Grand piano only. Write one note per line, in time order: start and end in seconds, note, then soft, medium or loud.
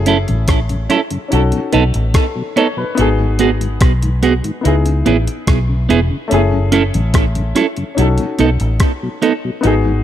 0.00 1.27 A3 medium
0.00 1.27 C#4 medium
0.00 1.29 E4 medium
0.00 1.33 G#4 medium
1.28 2.93 C#4 medium
1.28 2.94 D#4 medium
1.33 2.95 F#4 medium
1.33 2.13 A4 medium
2.15 2.54 A4 medium
2.57 2.77 C#5 medium
2.78 3.17 B4 medium
2.95 4.59 B3 medium
2.95 4.61 D#4 medium
2.99 4.62 F#4 medium
2.99 4.63 G#4 medium
4.61 6.26 B3 medium
4.61 6.27 D#4 medium
4.65 6.28 E4 medium
4.65 6.29 G#4 medium
6.28 7.92 A3 medium
6.28 7.93 C#4 medium
6.32 7.94 E4 medium
6.32 7.95 G#4 medium
7.95 9.59 C#4 medium
7.95 9.60 D#4 medium
7.99 9.61 F#4 medium
7.99 9.62 A4 medium
9.61 10.04 B3 medium
9.61 10.04 D#4 medium
9.61 10.04 F#4 medium
9.67 10.04 G#4 medium